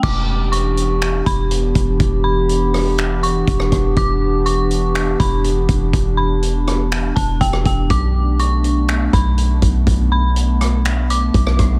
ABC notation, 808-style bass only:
X:1
M:4/4
L:1/8
Q:1/4=122
K:Edor
V:1 name="808-style bass" clef=bass
E,,,4- E,,, E,,,2 E,,, | E,,,6 E,,, E,,, | E,,,4- E,,, E,,,2 E,,, | E,,,4- E,,, E,,, E,,, E,,, |
B,,,4- B,,, B,,,2 B,,, | B,,,6 B,,, B,,, |]